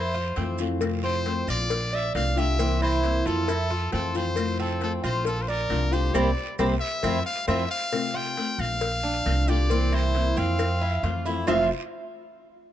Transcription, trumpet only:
Already playing: C5
1.04 C5
1.50 D5
1.95 E5
2.15 F5
2.39 E5
2.83 C5
3.27 A4
3.94 A4
4.17 C5
4.61 A4
4.83 A4
5.05 C5
5.27 A4
5.42 C5
5.49 A#4
5.93 C5
6.15 D5
6.80 E5
7.26 F5
7.49 E5
7.71 F5
8.16 G5
8.60 F5
9.49 D5
9.95 C5
10.38 F5
11.48 F5

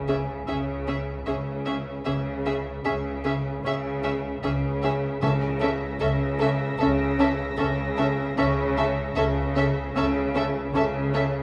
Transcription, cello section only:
Already playing: C#3
0.49 C#3
1.27 C#3
2.06 C#3
2.86 C#3
3.64 C#3
4.43 C#3
5.22 C#3
6.01 C#3
6.80 C#3
7.59 C#3
8.38 C#3
9.17 C#3
9.96 C#3
10.75 C#3

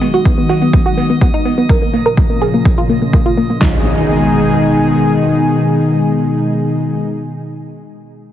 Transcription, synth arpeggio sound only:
0.01 B3
0.14 F#4
0.25 B3
0.38 B3
0.49 F#4
0.62 B3
0.73 B3
0.86 F#4
0.97 B3
1.10 B3
1.21 B3
1.34 D#4
1.45 B3
1.58 B3
1.69 A#4
1.82 A#3
1.94 A#3
2.06 A#4
2.17 A#3
2.30 A#3
2.41 G#4
2.54 A#3
2.66 A#3
2.78 F4
2.89 A#3
3.02 A#3
3.13 A#3
3.26 F4
3.37 A#3
3.50 A#3
3.61 D#4

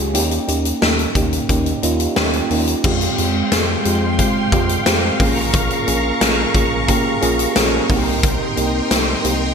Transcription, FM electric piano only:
Already playing: G#3 C#4 F4 G4 G#4
0.14 A#3 C#4 D#4 G4
0.47 A#3 C#4 D#4 G4
0.81 A#3 C#4 D#4 G4
1.15 A#3 C#4 D#4 G4
1.49 A#3 C#4 D#4 G4
1.83 A#3 C#4 D#4 F4
2.16 A#3 C#4 D#4 G4
2.50 A#3 C#4 D#4 G4
2.84 G#3 C4 F4 G4
3.18 G#3 C4 F4 G4
3.52 G#3 C4 F4 G#4
3.85 G#3 C4 F4 G4
4.19 G#3 C4 F4 G4
4.52 G#3 C4 F4 G4
4.86 G#3 C4 F4 G4
5.20 A#3 C#4 F4 G#4
5.87 A#3 C#4 F4 G#4
6.20 A#3 C#4 F4 G#4
6.55 A#3 C#4 F4 G#4
6.88 A#3 C#4 F4 G4
7.21 A#3 C#4 F4 G#4
7.55 A#3 C#4 F4 G#4
7.89 A#3 C4 D#4 F#4
7.96 G4
8.56 A#3 C4 D#4 G4
8.90 A#3 C4 D#4 G4
9.24 A#3 C4 D#4 G4

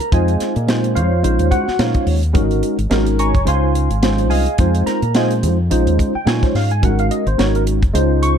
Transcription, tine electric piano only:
Already playing: A#4 A#5
0.11 G#3 C4 D#4 F4 G#4 C5 D#5 F5 G#5
0.67 G#3 C4 D#4 F4 C5
0.95 F4 C5 C#5 F5
1.23 G#3 C#4 D#4 F4 C5
1.51 F#4 F#5
1.78 G#3 C#4 D#4 F4 C5 C#5 F5
2.33 G#3 C#4 D#4 F#4 A#4
2.90 G#3 C#4 D#4 F#4 A#4
3.19 C#5 G#5 A#5 C#6
3.45 G#3 C#4 D#4 F4 C5 F5 G#5 C6
4.02 G#3 C#4 D#4 F4 C5
4.30 G#4 D#5 F5 G#5
4.58 G#3 C4 D#4 F4 C5
4.86 A#4 A#5
5.14 G#3 C4 D#4 F4 G#4 C5 D#5 F5 G#5
5.70 G#3 C#4 D#4 F4 C5
6.15 G5
6.26 G#3 C#4 D#4 F4 C#5 G#5
6.43 C5
6.56 F5
6.71 G#5
6.82 G#3 C#4 D#4 F#4 A#4 F#5
7.00 F5
7.11 D#5
7.27 C5
7.37 G#3 C#4 D#4 F#4 A#4 C#5
7.56 A#4
7.93 G#3 C#4 D#4 F4 C5
8.23 C#6

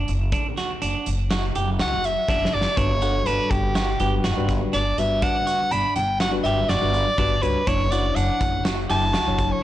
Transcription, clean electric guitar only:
Already playing: D4
0.33 D4
0.58 F#4
0.82 D4
1.31 F#4
1.56 G4
1.80 F#4
2.29 D4
2.78 D4
3.02 F#4
3.27 D4
3.75 F#4
4.00 G4
4.24 F#4
4.73 D4
5.22 D4
5.47 F#4
5.72 D4
6.21 F#4
6.46 G4
6.70 F#4
7.19 D4
7.68 D4
7.92 F#4
8.16 D4
8.65 F#4
8.90 G4
9.13 F#4

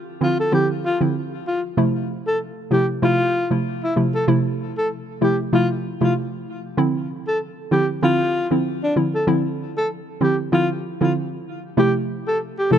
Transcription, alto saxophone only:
0.23 F4
0.40 A4
0.54 G4
0.85 F4
1.47 F4
2.27 A4
2.73 G4
3.04 F4
3.84 E4
4.15 A4
4.78 A4
5.23 G4
5.55 F4
6.03 F4
7.28 A4
7.73 G4
8.04 F4
8.83 D4
9.15 A4
9.77 A4
10.23 G4
10.54 F4
11.02 F4
11.79 G4
12.28 A4
12.59 G4
12.73 A4

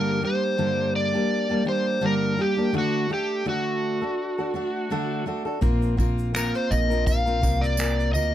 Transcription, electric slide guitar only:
Already playing: A#4
0.25 C5
0.96 D5
1.69 C5
2.06 A#4
2.41 G4
2.78 F#4
3.14 G4
3.49 F#4
6.36 A#4
6.55 C5
6.71 D#5
7.07 F5
7.61 D5
8.14 D#5

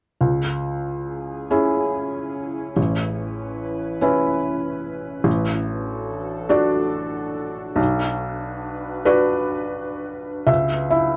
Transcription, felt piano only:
0.21 C#2
1.50 C#4 E4 G#4
2.77 A1
4.01 C#4 E4 B4
5.24 A1
6.49 D4 F#4 D5
7.76 B1
9.05 D4 F#4 B4 D5
10.47 C#2 E5
10.90 E4 E5

